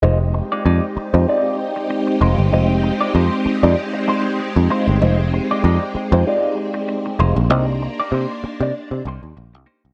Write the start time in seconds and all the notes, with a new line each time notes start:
0.02 F1 G#3 C4 D#4 F4 G4 C5
0.21 muted clean electric guitar stroke
0.34 muted clean electric guitar stroke
0.52 G#3 D#4 F4 D5
0.65 F2 G#3 D#4 F4 D5
0.97 muted clean electric guitar stroke, muted picked electric bass stroke
1.14 F2 G#3 D#4 F4 C5
1.28 G#3 D#4 F4 D5
1.58 muted clean electric guitar stroke
1.76 muted clean electric guitar stroke
1.90 muted clean electric guitar stroke
2.07 muted clean electric guitar stroke
2.21 F1 G#3 D#4 F4 C5
2.38 G1, muted clean electric guitar stroke
2.52 F1 G#3 D#4 F4 C5
2.70 muted clean electric guitar stroke
2.83 muted clean electric guitar stroke
3.01 G#3 D#4 F4 D5
3.15 F2 G#3 D#4 F4 C5
3.46 muted clean electric guitar stroke, muted picked electric bass stroke
3.63 F2 G#3 D#4 F4 D5
3.93 muted clean electric guitar stroke
4.08 G#3 D#4 F4 C5
4.25 muted clean electric guitar stroke
4.39 muted clean electric guitar stroke
4.56 F2, muted clean electric guitar stroke
4.70 G#3 D#4 F4 C5
4.88 G1, muted clean electric guitar stroke
5.02 F1 G#3 D#4 F4 C5
5.20 muted clean electric guitar stroke
5.33 muted clean electric guitar stroke
5.51 G#3 D#4 F4 D5
5.64 F2 G#3 D#4 F4 D5
5.95 muted picked electric bass stroke, muted clean electric guitar stroke
6.12 F2 G#3 D#4 F4 C5
6.27 G#3 D#4 F4 D5
6.57 muted clean electric guitar stroke
6.74 muted clean electric guitar stroke
6.88 muted clean electric guitar stroke
7.06 muted clean electric guitar stroke
7.19 F1 G#3 D#4 F4 C5
7.36 A#1, muted clean electric guitar stroke
7.48 C2 A#3 D4 D#4 G4 C5
7.68 muted clean electric guitar stroke
7.82 muted clean electric guitar stroke
8.00 A#3 D#4 G4 D5
8.12 C3 A#3 D#4 G4 C5
8.44 muted picked electric bass stroke, muted clean electric guitar stroke
8.61 C3 A#3 D#4 G4 D5
8.91 C3, muted clean electric guitar stroke
9.05 C2 A#3 D#4 G4 C5
9.23 D#2, muted clean electric guitar stroke
9.37 A#1, muted clean electric guitar stroke
9.53 C2, muted clean electric guitar stroke
9.66 A#3 D#4 G4 C5
9.85 C2